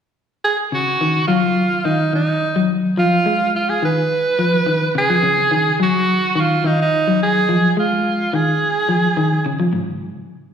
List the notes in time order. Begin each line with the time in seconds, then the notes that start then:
0.45 G#4
0.72 C#3 F#4
1.01 D#3
1.27 F#3 F4
1.85 D#3 D#4
2.13 D#3 D#4
2.56 F#3
2.97 F3 F4
3.26 G#3
3.56 F4
3.69 G#4
3.82 D#3 B4
4.39 F3
4.67 D#3
4.95 C#3 G#4
5.10 F3
5.23 C#3
5.51 D#3
5.80 F#3 F#4
6.36 D#3
6.40 F4
6.64 D#3 D#4
6.82 D#4
7.08 F#3
7.23 G#4
7.49 F3
7.77 G#3 F4
8.33 D#3 G#4
8.89 F3
9.17 D#3
9.46 C#3
9.60 F3
9.73 G#2